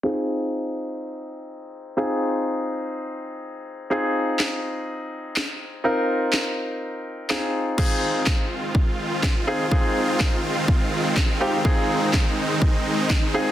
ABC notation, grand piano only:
X:1
M:4/4
L:1/8
Q:1/4=124
K:Fm
V:1 name="Grand piano"
[CEFA]8 | [CEFA]8 | [CEFA]8 | [CEFB]6 [CEFA]2 |
[CEFA]3 z4 [CEFA] | [CEFA]3 z4 [CEFG] | [CEFA]3 z4 [CEFA] |]